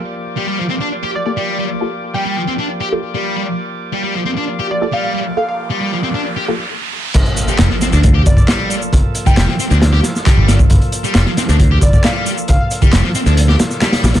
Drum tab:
CC |----------------|----------------|----------------|----------------|
HH |----------------|----------------|----------------|----------------|
SH |----------------|----------------|----------------|----------------|
CP |----------------|----------------|----------------|----------------|
SD |----------------|----------------|----------------|----------------|
BD |----------------|----------------|----------------|----------------|

CC |x---------------|----------------|----------------|----------------|
HH |xxx-x-x-x-x-x-x-|x-x-x-x-x-x-x-x-|xxx-x-x-x-x-x-x-|x-x-x-x-x-x-xxxx|
SH |x-xxx-xxx-xxx-xx|x-xxx-xxx-xxx-xx|x-xxx-xxx-xxx-xx|x-xxx-xxx-xxx-xx|
CP |----x-------x---|----x-------x---|----x-------x---|----x-------x---|
SD |----oooo----o---|----oo-ooooo--o-|----oooo----o---|----oo-o-ooooooo|
BD |o-------o-oo----|o--o--------o--o|o-------o-oo----|o--o------------|